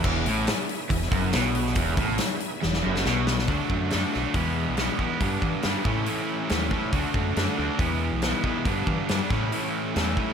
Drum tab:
CC |x---------------|----------------|----------------|----------------|
HH |--o-o-o-o-o-o-o-|o-o-o-o---------|o---o---o---o---|o---o---o---o---|
SD |----o----o--o--o|----o---oo-oo-oo|----o-o-----o---|----o-------o---|
BD |o-------o-o-----|o-o-------------|o-o-----o-----o-|o-o---o-------o-|

CC |----------------|----------------|
HH |o---o---o---o---|o---o---o---o---|
SD |----o-------o---|----o-o-----o---|
BD |o-o-----o-----o-|o-o---o-------o-|